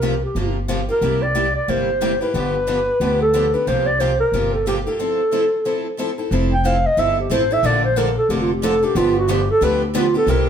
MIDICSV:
0, 0, Header, 1, 4, 480
1, 0, Start_track
1, 0, Key_signature, -1, "major"
1, 0, Tempo, 330579
1, 1480, Time_signature, 4, 2, 24, 8
1, 15237, End_track
2, 0, Start_track
2, 0, Title_t, "Clarinet"
2, 0, Program_c, 0, 71
2, 0, Note_on_c, 0, 70, 71
2, 315, Note_off_c, 0, 70, 0
2, 370, Note_on_c, 0, 67, 63
2, 797, Note_off_c, 0, 67, 0
2, 1299, Note_on_c, 0, 70, 86
2, 1779, Note_on_c, 0, 74, 88
2, 1801, Note_off_c, 0, 70, 0
2, 2256, Note_off_c, 0, 74, 0
2, 2269, Note_on_c, 0, 74, 77
2, 2468, Note_on_c, 0, 72, 90
2, 2490, Note_off_c, 0, 74, 0
2, 3219, Note_off_c, 0, 72, 0
2, 3228, Note_on_c, 0, 71, 93
2, 4607, Note_off_c, 0, 71, 0
2, 4670, Note_on_c, 0, 69, 74
2, 5149, Note_on_c, 0, 71, 73
2, 5170, Note_off_c, 0, 69, 0
2, 5344, Note_on_c, 0, 72, 81
2, 5366, Note_off_c, 0, 71, 0
2, 5617, Note_on_c, 0, 74, 79
2, 5639, Note_off_c, 0, 72, 0
2, 5816, Note_on_c, 0, 72, 74
2, 5837, Note_off_c, 0, 74, 0
2, 6097, Note_off_c, 0, 72, 0
2, 6105, Note_on_c, 0, 70, 78
2, 6551, Note_off_c, 0, 70, 0
2, 6589, Note_on_c, 0, 69, 62
2, 6764, Note_off_c, 0, 69, 0
2, 6788, Note_on_c, 0, 67, 69
2, 6915, Note_off_c, 0, 67, 0
2, 7065, Note_on_c, 0, 69, 78
2, 8639, Note_off_c, 0, 69, 0
2, 9485, Note_on_c, 0, 79, 85
2, 9677, Note_on_c, 0, 77, 79
2, 9699, Note_off_c, 0, 79, 0
2, 9968, Note_on_c, 0, 75, 91
2, 9989, Note_off_c, 0, 77, 0
2, 10157, Note_on_c, 0, 76, 87
2, 10179, Note_off_c, 0, 75, 0
2, 10436, Note_off_c, 0, 76, 0
2, 10455, Note_on_c, 0, 67, 70
2, 10632, Note_on_c, 0, 72, 86
2, 10654, Note_off_c, 0, 67, 0
2, 10936, Note_on_c, 0, 76, 104
2, 10958, Note_off_c, 0, 72, 0
2, 11126, Note_on_c, 0, 74, 88
2, 11148, Note_off_c, 0, 76, 0
2, 11389, Note_off_c, 0, 74, 0
2, 11397, Note_on_c, 0, 72, 87
2, 11584, Note_on_c, 0, 70, 72
2, 11606, Note_off_c, 0, 72, 0
2, 11867, Note_off_c, 0, 70, 0
2, 11873, Note_on_c, 0, 69, 88
2, 12057, Note_on_c, 0, 67, 75
2, 12078, Note_off_c, 0, 69, 0
2, 12216, Note_on_c, 0, 65, 67
2, 12238, Note_off_c, 0, 67, 0
2, 12385, Note_on_c, 0, 67, 72
2, 12407, Note_off_c, 0, 65, 0
2, 12547, Note_on_c, 0, 69, 82
2, 12568, Note_off_c, 0, 67, 0
2, 12835, Note_on_c, 0, 67, 85
2, 12857, Note_off_c, 0, 69, 0
2, 13028, Note_on_c, 0, 65, 76
2, 13050, Note_off_c, 0, 67, 0
2, 13306, Note_off_c, 0, 65, 0
2, 13342, Note_on_c, 0, 66, 80
2, 13530, Note_on_c, 0, 67, 77
2, 13551, Note_off_c, 0, 66, 0
2, 13795, Note_off_c, 0, 67, 0
2, 13812, Note_on_c, 0, 69, 97
2, 14003, Note_on_c, 0, 71, 95
2, 14025, Note_off_c, 0, 69, 0
2, 14271, Note_off_c, 0, 71, 0
2, 14301, Note_on_c, 0, 62, 42
2, 14486, Note_on_c, 0, 65, 75
2, 14508, Note_off_c, 0, 62, 0
2, 14751, Note_off_c, 0, 65, 0
2, 14767, Note_on_c, 0, 69, 91
2, 14960, Note_on_c, 0, 70, 82
2, 14982, Note_off_c, 0, 69, 0
2, 15226, Note_off_c, 0, 70, 0
2, 15237, End_track
3, 0, Start_track
3, 0, Title_t, "Steel-string acoustic guitar"
3, 0, Program_c, 1, 25
3, 34, Note_on_c, 1, 48, 67
3, 38, Note_on_c, 1, 53, 61
3, 40, Note_on_c, 1, 58, 67
3, 46, Note_on_c, 1, 65, 69
3, 48, Note_on_c, 1, 67, 80
3, 192, Note_off_c, 1, 48, 0
3, 194, Note_off_c, 1, 53, 0
3, 195, Note_off_c, 1, 58, 0
3, 198, Note_off_c, 1, 65, 0
3, 199, Note_off_c, 1, 67, 0
3, 520, Note_on_c, 1, 48, 50
3, 522, Note_on_c, 1, 53, 50
3, 524, Note_on_c, 1, 58, 59
3, 525, Note_on_c, 1, 65, 55
3, 527, Note_on_c, 1, 67, 55
3, 813, Note_off_c, 1, 48, 0
3, 814, Note_off_c, 1, 53, 0
3, 816, Note_off_c, 1, 58, 0
3, 816, Note_off_c, 1, 65, 0
3, 817, Note_off_c, 1, 67, 0
3, 992, Note_on_c, 1, 48, 77
3, 998, Note_on_c, 1, 53, 72
3, 1003, Note_on_c, 1, 58, 75
3, 1003, Note_on_c, 1, 65, 81
3, 1007, Note_on_c, 1, 67, 76
3, 1152, Note_off_c, 1, 48, 0
3, 1155, Note_off_c, 1, 53, 0
3, 1158, Note_off_c, 1, 58, 0
3, 1158, Note_off_c, 1, 65, 0
3, 1160, Note_off_c, 1, 67, 0
3, 1288, Note_on_c, 1, 67, 46
3, 1299, Note_on_c, 1, 65, 40
3, 1308, Note_on_c, 1, 58, 37
3, 1467, Note_off_c, 1, 58, 0
3, 1471, Note_off_c, 1, 67, 0
3, 1476, Note_on_c, 1, 48, 49
3, 1477, Note_off_c, 1, 65, 0
3, 1482, Note_on_c, 1, 55, 58
3, 1485, Note_on_c, 1, 58, 57
3, 1487, Note_on_c, 1, 64, 63
3, 1491, Note_on_c, 1, 67, 61
3, 1773, Note_off_c, 1, 48, 0
3, 1776, Note_off_c, 1, 55, 0
3, 1778, Note_off_c, 1, 58, 0
3, 1779, Note_off_c, 1, 64, 0
3, 1781, Note_off_c, 1, 67, 0
3, 1958, Note_on_c, 1, 48, 73
3, 1960, Note_on_c, 1, 55, 68
3, 1962, Note_on_c, 1, 58, 64
3, 1968, Note_on_c, 1, 64, 68
3, 1970, Note_on_c, 1, 67, 75
3, 2117, Note_off_c, 1, 48, 0
3, 2118, Note_off_c, 1, 55, 0
3, 2119, Note_off_c, 1, 58, 0
3, 2122, Note_off_c, 1, 64, 0
3, 2123, Note_off_c, 1, 67, 0
3, 2443, Note_on_c, 1, 48, 58
3, 2445, Note_on_c, 1, 55, 55
3, 2447, Note_on_c, 1, 58, 58
3, 2449, Note_on_c, 1, 64, 53
3, 2454, Note_on_c, 1, 67, 56
3, 2738, Note_off_c, 1, 48, 0
3, 2739, Note_off_c, 1, 55, 0
3, 2740, Note_off_c, 1, 58, 0
3, 2741, Note_off_c, 1, 64, 0
3, 2744, Note_off_c, 1, 67, 0
3, 2922, Note_on_c, 1, 48, 68
3, 2925, Note_on_c, 1, 58, 71
3, 2927, Note_on_c, 1, 55, 80
3, 2930, Note_on_c, 1, 67, 77
3, 2931, Note_on_c, 1, 64, 81
3, 3080, Note_off_c, 1, 48, 0
3, 3082, Note_off_c, 1, 58, 0
3, 3083, Note_off_c, 1, 55, 0
3, 3084, Note_off_c, 1, 67, 0
3, 3085, Note_off_c, 1, 64, 0
3, 3208, Note_on_c, 1, 67, 47
3, 3224, Note_on_c, 1, 64, 47
3, 3231, Note_on_c, 1, 58, 41
3, 3394, Note_off_c, 1, 67, 0
3, 3400, Note_off_c, 1, 58, 0
3, 3401, Note_on_c, 1, 50, 54
3, 3402, Note_off_c, 1, 64, 0
3, 3405, Note_on_c, 1, 53, 56
3, 3406, Note_on_c, 1, 59, 59
3, 3412, Note_on_c, 1, 62, 58
3, 3414, Note_on_c, 1, 67, 62
3, 3698, Note_off_c, 1, 50, 0
3, 3700, Note_off_c, 1, 53, 0
3, 3701, Note_off_c, 1, 59, 0
3, 3704, Note_off_c, 1, 62, 0
3, 3705, Note_off_c, 1, 67, 0
3, 3881, Note_on_c, 1, 53, 65
3, 3883, Note_on_c, 1, 50, 68
3, 3887, Note_on_c, 1, 59, 67
3, 3890, Note_on_c, 1, 62, 72
3, 3896, Note_on_c, 1, 67, 77
3, 4041, Note_off_c, 1, 53, 0
3, 4043, Note_off_c, 1, 50, 0
3, 4044, Note_off_c, 1, 59, 0
3, 4046, Note_off_c, 1, 62, 0
3, 4049, Note_off_c, 1, 67, 0
3, 4368, Note_on_c, 1, 50, 56
3, 4368, Note_on_c, 1, 53, 65
3, 4371, Note_on_c, 1, 59, 56
3, 4375, Note_on_c, 1, 62, 55
3, 4376, Note_on_c, 1, 67, 60
3, 4663, Note_off_c, 1, 50, 0
3, 4663, Note_off_c, 1, 53, 0
3, 4665, Note_off_c, 1, 59, 0
3, 4667, Note_off_c, 1, 62, 0
3, 4667, Note_off_c, 1, 67, 0
3, 4842, Note_on_c, 1, 50, 68
3, 4847, Note_on_c, 1, 53, 80
3, 4849, Note_on_c, 1, 59, 72
3, 4853, Note_on_c, 1, 67, 82
3, 4855, Note_on_c, 1, 62, 73
3, 5003, Note_off_c, 1, 50, 0
3, 5005, Note_off_c, 1, 53, 0
3, 5007, Note_off_c, 1, 59, 0
3, 5009, Note_off_c, 1, 67, 0
3, 5010, Note_off_c, 1, 62, 0
3, 5136, Note_on_c, 1, 67, 49
3, 5144, Note_on_c, 1, 62, 44
3, 5153, Note_on_c, 1, 59, 38
3, 5321, Note_off_c, 1, 67, 0
3, 5325, Note_off_c, 1, 62, 0
3, 5329, Note_off_c, 1, 59, 0
3, 5331, Note_on_c, 1, 48, 61
3, 5332, Note_on_c, 1, 53, 59
3, 5335, Note_on_c, 1, 65, 60
3, 5339, Note_on_c, 1, 58, 52
3, 5339, Note_on_c, 1, 67, 62
3, 5626, Note_off_c, 1, 48, 0
3, 5627, Note_off_c, 1, 53, 0
3, 5628, Note_off_c, 1, 65, 0
3, 5630, Note_off_c, 1, 58, 0
3, 5630, Note_off_c, 1, 67, 0
3, 5807, Note_on_c, 1, 48, 65
3, 5813, Note_on_c, 1, 53, 68
3, 5813, Note_on_c, 1, 58, 77
3, 5816, Note_on_c, 1, 65, 70
3, 5823, Note_on_c, 1, 67, 70
3, 5967, Note_off_c, 1, 48, 0
3, 5970, Note_off_c, 1, 53, 0
3, 5970, Note_off_c, 1, 58, 0
3, 5971, Note_off_c, 1, 65, 0
3, 5975, Note_off_c, 1, 67, 0
3, 6294, Note_on_c, 1, 48, 56
3, 6295, Note_on_c, 1, 53, 58
3, 6298, Note_on_c, 1, 58, 65
3, 6301, Note_on_c, 1, 67, 57
3, 6304, Note_on_c, 1, 65, 62
3, 6588, Note_off_c, 1, 48, 0
3, 6589, Note_off_c, 1, 53, 0
3, 6591, Note_off_c, 1, 58, 0
3, 6592, Note_off_c, 1, 67, 0
3, 6594, Note_off_c, 1, 65, 0
3, 6779, Note_on_c, 1, 48, 77
3, 6783, Note_on_c, 1, 53, 75
3, 6784, Note_on_c, 1, 58, 76
3, 6785, Note_on_c, 1, 65, 77
3, 6794, Note_on_c, 1, 67, 87
3, 6934, Note_off_c, 1, 48, 0
3, 6936, Note_off_c, 1, 53, 0
3, 6936, Note_off_c, 1, 58, 0
3, 6937, Note_off_c, 1, 65, 0
3, 6942, Note_off_c, 1, 67, 0
3, 7066, Note_on_c, 1, 67, 50
3, 7076, Note_on_c, 1, 65, 46
3, 7087, Note_on_c, 1, 58, 43
3, 7248, Note_off_c, 1, 67, 0
3, 7250, Note_off_c, 1, 58, 0
3, 7253, Note_off_c, 1, 65, 0
3, 7254, Note_on_c, 1, 53, 55
3, 7255, Note_on_c, 1, 60, 57
3, 7260, Note_on_c, 1, 64, 58
3, 7261, Note_on_c, 1, 69, 60
3, 7550, Note_off_c, 1, 53, 0
3, 7550, Note_off_c, 1, 60, 0
3, 7553, Note_off_c, 1, 64, 0
3, 7553, Note_off_c, 1, 69, 0
3, 7729, Note_on_c, 1, 53, 64
3, 7734, Note_on_c, 1, 64, 63
3, 7736, Note_on_c, 1, 60, 65
3, 7742, Note_on_c, 1, 69, 74
3, 7890, Note_off_c, 1, 53, 0
3, 7893, Note_off_c, 1, 60, 0
3, 7893, Note_off_c, 1, 64, 0
3, 7896, Note_off_c, 1, 69, 0
3, 8208, Note_on_c, 1, 53, 52
3, 8216, Note_on_c, 1, 60, 51
3, 8216, Note_on_c, 1, 64, 62
3, 8219, Note_on_c, 1, 69, 59
3, 8507, Note_off_c, 1, 53, 0
3, 8511, Note_off_c, 1, 60, 0
3, 8511, Note_off_c, 1, 64, 0
3, 8513, Note_off_c, 1, 69, 0
3, 8690, Note_on_c, 1, 53, 70
3, 8697, Note_on_c, 1, 60, 77
3, 8700, Note_on_c, 1, 64, 75
3, 8703, Note_on_c, 1, 69, 82
3, 8851, Note_off_c, 1, 53, 0
3, 8854, Note_off_c, 1, 60, 0
3, 8856, Note_off_c, 1, 64, 0
3, 8857, Note_off_c, 1, 69, 0
3, 8973, Note_on_c, 1, 69, 42
3, 8987, Note_on_c, 1, 64, 44
3, 8991, Note_on_c, 1, 60, 42
3, 9162, Note_off_c, 1, 69, 0
3, 9166, Note_off_c, 1, 64, 0
3, 9168, Note_off_c, 1, 60, 0
3, 9176, Note_on_c, 1, 53, 63
3, 9183, Note_on_c, 1, 64, 68
3, 9185, Note_on_c, 1, 60, 64
3, 9190, Note_on_c, 1, 69, 66
3, 9471, Note_off_c, 1, 53, 0
3, 9475, Note_off_c, 1, 64, 0
3, 9476, Note_off_c, 1, 60, 0
3, 9478, Note_off_c, 1, 69, 0
3, 9653, Note_on_c, 1, 53, 70
3, 9659, Note_on_c, 1, 60, 82
3, 9663, Note_on_c, 1, 64, 79
3, 9663, Note_on_c, 1, 69, 76
3, 9812, Note_off_c, 1, 53, 0
3, 9815, Note_off_c, 1, 60, 0
3, 9817, Note_off_c, 1, 64, 0
3, 9817, Note_off_c, 1, 69, 0
3, 10123, Note_on_c, 1, 53, 61
3, 10129, Note_on_c, 1, 60, 57
3, 10132, Note_on_c, 1, 64, 62
3, 10137, Note_on_c, 1, 69, 67
3, 10424, Note_off_c, 1, 53, 0
3, 10427, Note_off_c, 1, 60, 0
3, 10428, Note_off_c, 1, 64, 0
3, 10431, Note_off_c, 1, 69, 0
3, 10614, Note_on_c, 1, 53, 84
3, 10618, Note_on_c, 1, 60, 97
3, 10618, Note_on_c, 1, 64, 92
3, 10625, Note_on_c, 1, 69, 90
3, 10772, Note_off_c, 1, 53, 0
3, 10774, Note_off_c, 1, 60, 0
3, 10774, Note_off_c, 1, 64, 0
3, 10777, Note_off_c, 1, 69, 0
3, 10900, Note_on_c, 1, 69, 56
3, 10914, Note_on_c, 1, 64, 54
3, 10922, Note_on_c, 1, 60, 47
3, 11085, Note_off_c, 1, 69, 0
3, 11091, Note_off_c, 1, 64, 0
3, 11091, Note_on_c, 1, 50, 63
3, 11093, Note_on_c, 1, 53, 63
3, 11094, Note_off_c, 1, 60, 0
3, 11100, Note_on_c, 1, 58, 69
3, 11101, Note_on_c, 1, 69, 76
3, 11104, Note_on_c, 1, 62, 75
3, 11387, Note_off_c, 1, 50, 0
3, 11387, Note_off_c, 1, 53, 0
3, 11391, Note_off_c, 1, 58, 0
3, 11392, Note_off_c, 1, 69, 0
3, 11393, Note_off_c, 1, 62, 0
3, 11562, Note_on_c, 1, 50, 79
3, 11568, Note_on_c, 1, 58, 90
3, 11570, Note_on_c, 1, 53, 76
3, 11574, Note_on_c, 1, 62, 83
3, 11581, Note_on_c, 1, 69, 89
3, 11724, Note_off_c, 1, 50, 0
3, 11727, Note_off_c, 1, 58, 0
3, 11728, Note_off_c, 1, 53, 0
3, 11730, Note_off_c, 1, 62, 0
3, 11734, Note_off_c, 1, 69, 0
3, 12050, Note_on_c, 1, 50, 64
3, 12050, Note_on_c, 1, 53, 60
3, 12052, Note_on_c, 1, 58, 67
3, 12056, Note_on_c, 1, 62, 74
3, 12058, Note_on_c, 1, 69, 70
3, 12344, Note_off_c, 1, 50, 0
3, 12344, Note_off_c, 1, 53, 0
3, 12345, Note_off_c, 1, 58, 0
3, 12347, Note_off_c, 1, 62, 0
3, 12348, Note_off_c, 1, 69, 0
3, 12534, Note_on_c, 1, 50, 95
3, 12536, Note_on_c, 1, 53, 90
3, 12537, Note_on_c, 1, 58, 88
3, 12537, Note_on_c, 1, 62, 105
3, 12544, Note_on_c, 1, 69, 97
3, 12688, Note_off_c, 1, 50, 0
3, 12689, Note_off_c, 1, 53, 0
3, 12690, Note_off_c, 1, 58, 0
3, 12690, Note_off_c, 1, 62, 0
3, 12693, Note_off_c, 1, 69, 0
3, 12816, Note_on_c, 1, 69, 55
3, 12829, Note_on_c, 1, 62, 54
3, 12839, Note_on_c, 1, 58, 46
3, 12999, Note_off_c, 1, 62, 0
3, 12999, Note_off_c, 1, 69, 0
3, 13003, Note_on_c, 1, 50, 63
3, 13008, Note_off_c, 1, 58, 0
3, 13009, Note_on_c, 1, 53, 75
3, 13014, Note_on_c, 1, 59, 78
3, 13016, Note_on_c, 1, 62, 73
3, 13016, Note_on_c, 1, 67, 67
3, 13298, Note_off_c, 1, 50, 0
3, 13301, Note_off_c, 1, 53, 0
3, 13304, Note_off_c, 1, 59, 0
3, 13305, Note_off_c, 1, 62, 0
3, 13305, Note_off_c, 1, 67, 0
3, 13484, Note_on_c, 1, 53, 83
3, 13488, Note_on_c, 1, 50, 81
3, 13490, Note_on_c, 1, 59, 91
3, 13495, Note_on_c, 1, 62, 89
3, 13496, Note_on_c, 1, 67, 85
3, 13641, Note_off_c, 1, 53, 0
3, 13643, Note_off_c, 1, 50, 0
3, 13644, Note_off_c, 1, 59, 0
3, 13646, Note_off_c, 1, 62, 0
3, 13647, Note_off_c, 1, 67, 0
3, 13965, Note_on_c, 1, 50, 62
3, 13970, Note_on_c, 1, 59, 72
3, 13971, Note_on_c, 1, 53, 66
3, 13974, Note_on_c, 1, 62, 70
3, 13978, Note_on_c, 1, 67, 71
3, 14257, Note_off_c, 1, 50, 0
3, 14259, Note_off_c, 1, 53, 0
3, 14259, Note_off_c, 1, 59, 0
3, 14261, Note_off_c, 1, 62, 0
3, 14263, Note_off_c, 1, 67, 0
3, 14442, Note_on_c, 1, 50, 85
3, 14442, Note_on_c, 1, 59, 87
3, 14445, Note_on_c, 1, 53, 94
3, 14451, Note_on_c, 1, 62, 102
3, 14452, Note_on_c, 1, 67, 90
3, 14597, Note_off_c, 1, 50, 0
3, 14597, Note_off_c, 1, 59, 0
3, 14599, Note_off_c, 1, 53, 0
3, 14601, Note_off_c, 1, 62, 0
3, 14602, Note_off_c, 1, 67, 0
3, 14728, Note_on_c, 1, 67, 53
3, 14741, Note_on_c, 1, 62, 51
3, 14751, Note_on_c, 1, 59, 45
3, 14909, Note_off_c, 1, 67, 0
3, 14916, Note_off_c, 1, 62, 0
3, 14921, Note_off_c, 1, 59, 0
3, 14929, Note_on_c, 1, 48, 73
3, 14929, Note_on_c, 1, 55, 63
3, 14930, Note_on_c, 1, 60, 70
3, 14940, Note_on_c, 1, 67, 73
3, 14941, Note_on_c, 1, 64, 69
3, 15215, Note_off_c, 1, 48, 0
3, 15215, Note_off_c, 1, 55, 0
3, 15216, Note_off_c, 1, 60, 0
3, 15221, Note_off_c, 1, 67, 0
3, 15222, Note_off_c, 1, 64, 0
3, 15237, End_track
4, 0, Start_track
4, 0, Title_t, "Upright bass"
4, 0, Program_c, 2, 32
4, 0, Note_on_c, 2, 36, 66
4, 317, Note_off_c, 2, 36, 0
4, 507, Note_on_c, 2, 31, 65
4, 1282, Note_off_c, 2, 31, 0
4, 1471, Note_on_c, 2, 36, 66
4, 2245, Note_off_c, 2, 36, 0
4, 2440, Note_on_c, 2, 31, 61
4, 3211, Note_off_c, 2, 31, 0
4, 3397, Note_on_c, 2, 31, 70
4, 4170, Note_off_c, 2, 31, 0
4, 4358, Note_on_c, 2, 38, 65
4, 5132, Note_off_c, 2, 38, 0
4, 5329, Note_on_c, 2, 36, 70
4, 6099, Note_off_c, 2, 36, 0
4, 6271, Note_on_c, 2, 31, 60
4, 7049, Note_off_c, 2, 31, 0
4, 9162, Note_on_c, 2, 29, 80
4, 9935, Note_off_c, 2, 29, 0
4, 10119, Note_on_c, 2, 31, 62
4, 10534, Note_off_c, 2, 31, 0
4, 10598, Note_on_c, 2, 33, 75
4, 11013, Note_off_c, 2, 33, 0
4, 11075, Note_on_c, 2, 34, 79
4, 11849, Note_off_c, 2, 34, 0
4, 12035, Note_on_c, 2, 29, 66
4, 12806, Note_off_c, 2, 29, 0
4, 12998, Note_on_c, 2, 31, 86
4, 13766, Note_off_c, 2, 31, 0
4, 13957, Note_on_c, 2, 38, 74
4, 14723, Note_off_c, 2, 38, 0
4, 14904, Note_on_c, 2, 36, 81
4, 15237, Note_off_c, 2, 36, 0
4, 15237, End_track
0, 0, End_of_file